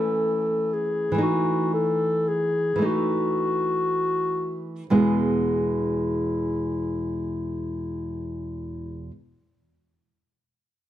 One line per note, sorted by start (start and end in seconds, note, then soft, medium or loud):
0.00 1.11 E3 soft
0.00 1.13 A3 soft
0.00 1.15 C#4 soft
0.00 0.75 A4 soft
0.74 1.21 G#4 medium
1.12 2.74 E3 soft
1.12 2.77 A3 soft
1.18 2.79 D#4 soft
1.18 1.72 F#4 medium
1.74 2.30 A4 medium
2.28 2.87 G#4 medium
2.76 4.82 E3 soft
2.76 4.83 A3 soft
2.82 4.85 D#4 soft
2.82 4.74 F#4 medium
4.90 9.10 E2 soft
4.90 9.11 B2 soft
4.90 9.11 G#3 soft
4.90 9.11 B3 soft
4.90 9.11 E4 soft
4.90 9.12 G#4 soft